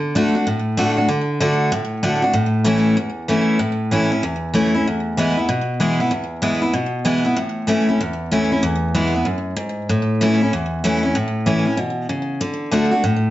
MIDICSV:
0, 0, Header, 1, 2, 480
1, 0, Start_track
1, 0, Key_signature, 3, "major"
1, 0, Tempo, 314630
1, 1664, Time_signature, 4, 2, 24, 8
1, 20294, End_track
2, 0, Start_track
2, 0, Title_t, "Steel-string acoustic guitar"
2, 0, Program_c, 0, 25
2, 0, Note_on_c, 0, 50, 83
2, 214, Note_off_c, 0, 50, 0
2, 232, Note_on_c, 0, 50, 86
2, 240, Note_on_c, 0, 62, 88
2, 241, Note_on_c, 0, 57, 83
2, 253, Note_on_c, 0, 66, 99
2, 514, Note_off_c, 0, 66, 0
2, 521, Note_off_c, 0, 50, 0
2, 525, Note_off_c, 0, 57, 0
2, 525, Note_off_c, 0, 62, 0
2, 532, Note_on_c, 0, 66, 61
2, 551, Note_on_c, 0, 62, 49
2, 701, Note_off_c, 0, 66, 0
2, 710, Note_off_c, 0, 62, 0
2, 714, Note_on_c, 0, 45, 86
2, 1180, Note_on_c, 0, 50, 89
2, 1182, Note_on_c, 0, 57, 91
2, 1195, Note_on_c, 0, 62, 93
2, 1199, Note_on_c, 0, 66, 91
2, 1458, Note_off_c, 0, 66, 0
2, 1473, Note_off_c, 0, 50, 0
2, 1474, Note_off_c, 0, 57, 0
2, 1476, Note_on_c, 0, 66, 57
2, 1480, Note_off_c, 0, 62, 0
2, 1497, Note_on_c, 0, 62, 51
2, 1632, Note_off_c, 0, 45, 0
2, 1651, Note_off_c, 0, 66, 0
2, 1656, Note_on_c, 0, 50, 85
2, 1661, Note_off_c, 0, 62, 0
2, 2125, Note_off_c, 0, 50, 0
2, 2143, Note_on_c, 0, 50, 93
2, 2146, Note_on_c, 0, 57, 89
2, 2153, Note_on_c, 0, 66, 93
2, 2156, Note_on_c, 0, 62, 97
2, 2603, Note_off_c, 0, 50, 0
2, 2605, Note_off_c, 0, 57, 0
2, 2608, Note_off_c, 0, 66, 0
2, 2610, Note_off_c, 0, 62, 0
2, 2622, Note_on_c, 0, 45, 92
2, 3096, Note_on_c, 0, 50, 90
2, 3097, Note_on_c, 0, 57, 89
2, 3103, Note_on_c, 0, 62, 88
2, 3113, Note_on_c, 0, 66, 87
2, 3370, Note_off_c, 0, 66, 0
2, 3387, Note_off_c, 0, 50, 0
2, 3388, Note_off_c, 0, 57, 0
2, 3389, Note_on_c, 0, 66, 60
2, 3391, Note_off_c, 0, 62, 0
2, 3412, Note_on_c, 0, 62, 54
2, 3543, Note_off_c, 0, 45, 0
2, 3561, Note_on_c, 0, 45, 83
2, 3564, Note_off_c, 0, 66, 0
2, 3576, Note_off_c, 0, 62, 0
2, 4035, Note_on_c, 0, 52, 96
2, 4042, Note_on_c, 0, 57, 88
2, 4054, Note_on_c, 0, 61, 97
2, 4061, Note_on_c, 0, 64, 101
2, 4492, Note_off_c, 0, 45, 0
2, 4507, Note_off_c, 0, 52, 0
2, 4510, Note_off_c, 0, 57, 0
2, 4516, Note_off_c, 0, 61, 0
2, 4520, Note_off_c, 0, 64, 0
2, 4528, Note_on_c, 0, 40, 89
2, 5008, Note_on_c, 0, 52, 91
2, 5017, Note_on_c, 0, 57, 86
2, 5021, Note_on_c, 0, 61, 97
2, 5035, Note_on_c, 0, 64, 87
2, 5454, Note_off_c, 0, 40, 0
2, 5472, Note_off_c, 0, 52, 0
2, 5477, Note_off_c, 0, 57, 0
2, 5479, Note_off_c, 0, 61, 0
2, 5481, Note_on_c, 0, 45, 84
2, 5486, Note_off_c, 0, 64, 0
2, 5970, Note_on_c, 0, 52, 81
2, 5984, Note_on_c, 0, 61, 86
2, 5985, Note_on_c, 0, 57, 87
2, 5998, Note_on_c, 0, 64, 95
2, 6261, Note_off_c, 0, 52, 0
2, 6263, Note_off_c, 0, 64, 0
2, 6269, Note_off_c, 0, 57, 0
2, 6269, Note_off_c, 0, 61, 0
2, 6281, Note_on_c, 0, 64, 62
2, 6299, Note_on_c, 0, 61, 43
2, 6410, Note_off_c, 0, 45, 0
2, 6447, Note_off_c, 0, 64, 0
2, 6455, Note_on_c, 0, 40, 88
2, 6456, Note_off_c, 0, 61, 0
2, 6920, Note_on_c, 0, 52, 90
2, 6933, Note_on_c, 0, 57, 89
2, 6940, Note_on_c, 0, 61, 95
2, 6943, Note_on_c, 0, 64, 89
2, 7216, Note_off_c, 0, 52, 0
2, 7222, Note_off_c, 0, 57, 0
2, 7222, Note_off_c, 0, 64, 0
2, 7226, Note_off_c, 0, 61, 0
2, 7240, Note_on_c, 0, 64, 62
2, 7259, Note_on_c, 0, 61, 53
2, 7376, Note_off_c, 0, 40, 0
2, 7406, Note_off_c, 0, 64, 0
2, 7416, Note_off_c, 0, 61, 0
2, 7437, Note_on_c, 0, 40, 85
2, 7893, Note_on_c, 0, 52, 86
2, 7905, Note_on_c, 0, 56, 91
2, 7906, Note_on_c, 0, 59, 101
2, 7919, Note_on_c, 0, 64, 107
2, 8178, Note_off_c, 0, 64, 0
2, 8182, Note_off_c, 0, 52, 0
2, 8188, Note_off_c, 0, 56, 0
2, 8189, Note_off_c, 0, 59, 0
2, 8197, Note_on_c, 0, 64, 57
2, 8226, Note_on_c, 0, 59, 49
2, 8347, Note_off_c, 0, 40, 0
2, 8364, Note_off_c, 0, 64, 0
2, 8371, Note_on_c, 0, 47, 90
2, 8379, Note_off_c, 0, 59, 0
2, 8846, Note_on_c, 0, 52, 78
2, 8856, Note_on_c, 0, 56, 87
2, 8863, Note_on_c, 0, 59, 95
2, 8868, Note_on_c, 0, 64, 99
2, 9137, Note_off_c, 0, 64, 0
2, 9138, Note_off_c, 0, 52, 0
2, 9143, Note_off_c, 0, 56, 0
2, 9146, Note_off_c, 0, 59, 0
2, 9155, Note_on_c, 0, 64, 67
2, 9169, Note_on_c, 0, 59, 48
2, 9294, Note_off_c, 0, 47, 0
2, 9319, Note_on_c, 0, 40, 83
2, 9323, Note_off_c, 0, 64, 0
2, 9330, Note_off_c, 0, 59, 0
2, 9792, Note_on_c, 0, 52, 89
2, 9800, Note_on_c, 0, 56, 89
2, 9802, Note_on_c, 0, 59, 92
2, 9806, Note_on_c, 0, 64, 93
2, 10077, Note_off_c, 0, 64, 0
2, 10091, Note_off_c, 0, 52, 0
2, 10095, Note_off_c, 0, 56, 0
2, 10095, Note_on_c, 0, 64, 64
2, 10096, Note_off_c, 0, 59, 0
2, 10116, Note_on_c, 0, 59, 44
2, 10248, Note_off_c, 0, 40, 0
2, 10273, Note_off_c, 0, 64, 0
2, 10275, Note_on_c, 0, 47, 86
2, 10283, Note_off_c, 0, 59, 0
2, 10751, Note_on_c, 0, 52, 80
2, 10756, Note_on_c, 0, 56, 85
2, 10762, Note_on_c, 0, 59, 101
2, 10772, Note_on_c, 0, 64, 94
2, 11038, Note_off_c, 0, 64, 0
2, 11051, Note_off_c, 0, 52, 0
2, 11053, Note_off_c, 0, 56, 0
2, 11056, Note_off_c, 0, 59, 0
2, 11056, Note_on_c, 0, 64, 57
2, 11076, Note_on_c, 0, 59, 51
2, 11207, Note_off_c, 0, 47, 0
2, 11234, Note_off_c, 0, 64, 0
2, 11236, Note_on_c, 0, 45, 89
2, 11244, Note_off_c, 0, 59, 0
2, 11702, Note_on_c, 0, 52, 88
2, 11715, Note_on_c, 0, 57, 94
2, 11723, Note_on_c, 0, 61, 84
2, 11731, Note_on_c, 0, 64, 96
2, 12007, Note_off_c, 0, 52, 0
2, 12012, Note_off_c, 0, 64, 0
2, 12014, Note_off_c, 0, 57, 0
2, 12018, Note_off_c, 0, 61, 0
2, 12030, Note_on_c, 0, 64, 60
2, 12048, Note_on_c, 0, 61, 50
2, 12168, Note_off_c, 0, 45, 0
2, 12202, Note_off_c, 0, 64, 0
2, 12210, Note_off_c, 0, 61, 0
2, 12214, Note_on_c, 0, 40, 88
2, 12685, Note_on_c, 0, 52, 83
2, 12689, Note_on_c, 0, 57, 84
2, 12698, Note_on_c, 0, 61, 96
2, 12703, Note_on_c, 0, 64, 97
2, 12976, Note_off_c, 0, 64, 0
2, 12979, Note_off_c, 0, 52, 0
2, 12981, Note_off_c, 0, 57, 0
2, 12986, Note_off_c, 0, 61, 0
2, 12994, Note_on_c, 0, 64, 59
2, 13006, Note_on_c, 0, 61, 49
2, 13138, Note_off_c, 0, 40, 0
2, 13162, Note_on_c, 0, 40, 91
2, 13164, Note_off_c, 0, 64, 0
2, 13170, Note_off_c, 0, 61, 0
2, 13647, Note_on_c, 0, 52, 93
2, 13648, Note_on_c, 0, 56, 88
2, 13656, Note_on_c, 0, 59, 91
2, 13666, Note_on_c, 0, 64, 91
2, 13932, Note_off_c, 0, 64, 0
2, 13941, Note_off_c, 0, 52, 0
2, 13942, Note_off_c, 0, 56, 0
2, 13945, Note_off_c, 0, 59, 0
2, 13950, Note_on_c, 0, 64, 57
2, 13968, Note_on_c, 0, 59, 47
2, 14093, Note_off_c, 0, 40, 0
2, 14113, Note_on_c, 0, 42, 83
2, 14123, Note_off_c, 0, 64, 0
2, 14132, Note_off_c, 0, 59, 0
2, 14586, Note_off_c, 0, 42, 0
2, 14592, Note_on_c, 0, 44, 85
2, 15067, Note_off_c, 0, 44, 0
2, 15094, Note_on_c, 0, 45, 88
2, 15575, Note_on_c, 0, 52, 89
2, 15580, Note_on_c, 0, 57, 86
2, 15592, Note_on_c, 0, 61, 97
2, 15599, Note_on_c, 0, 64, 103
2, 15867, Note_off_c, 0, 52, 0
2, 15867, Note_off_c, 0, 64, 0
2, 15870, Note_off_c, 0, 57, 0
2, 15876, Note_off_c, 0, 61, 0
2, 15885, Note_on_c, 0, 64, 61
2, 15913, Note_on_c, 0, 61, 48
2, 16021, Note_off_c, 0, 45, 0
2, 16053, Note_off_c, 0, 64, 0
2, 16066, Note_on_c, 0, 40, 86
2, 16067, Note_off_c, 0, 61, 0
2, 16536, Note_on_c, 0, 52, 99
2, 16544, Note_on_c, 0, 57, 90
2, 16552, Note_on_c, 0, 61, 86
2, 16561, Note_on_c, 0, 64, 102
2, 16807, Note_off_c, 0, 64, 0
2, 16826, Note_on_c, 0, 64, 60
2, 16829, Note_off_c, 0, 52, 0
2, 16833, Note_off_c, 0, 57, 0
2, 16837, Note_off_c, 0, 61, 0
2, 16860, Note_on_c, 0, 61, 48
2, 16988, Note_off_c, 0, 40, 0
2, 17004, Note_off_c, 0, 64, 0
2, 17011, Note_on_c, 0, 45, 91
2, 17021, Note_off_c, 0, 61, 0
2, 17484, Note_on_c, 0, 52, 87
2, 17489, Note_on_c, 0, 57, 81
2, 17503, Note_on_c, 0, 64, 102
2, 17504, Note_on_c, 0, 61, 97
2, 17763, Note_off_c, 0, 64, 0
2, 17782, Note_on_c, 0, 64, 54
2, 17784, Note_off_c, 0, 52, 0
2, 17786, Note_off_c, 0, 61, 0
2, 17787, Note_off_c, 0, 57, 0
2, 17804, Note_on_c, 0, 61, 50
2, 17942, Note_off_c, 0, 45, 0
2, 17962, Note_on_c, 0, 47, 87
2, 17963, Note_off_c, 0, 64, 0
2, 17974, Note_off_c, 0, 61, 0
2, 18435, Note_off_c, 0, 47, 0
2, 18448, Note_on_c, 0, 49, 87
2, 18919, Note_off_c, 0, 49, 0
2, 18929, Note_on_c, 0, 50, 88
2, 19379, Note_off_c, 0, 50, 0
2, 19397, Note_on_c, 0, 50, 89
2, 19407, Note_on_c, 0, 57, 86
2, 19411, Note_on_c, 0, 66, 93
2, 19418, Note_on_c, 0, 62, 99
2, 19681, Note_off_c, 0, 66, 0
2, 19699, Note_on_c, 0, 66, 55
2, 19702, Note_off_c, 0, 50, 0
2, 19704, Note_off_c, 0, 62, 0
2, 19707, Note_off_c, 0, 57, 0
2, 19723, Note_on_c, 0, 62, 52
2, 19884, Note_off_c, 0, 66, 0
2, 19890, Note_on_c, 0, 45, 95
2, 19895, Note_off_c, 0, 62, 0
2, 20294, Note_off_c, 0, 45, 0
2, 20294, End_track
0, 0, End_of_file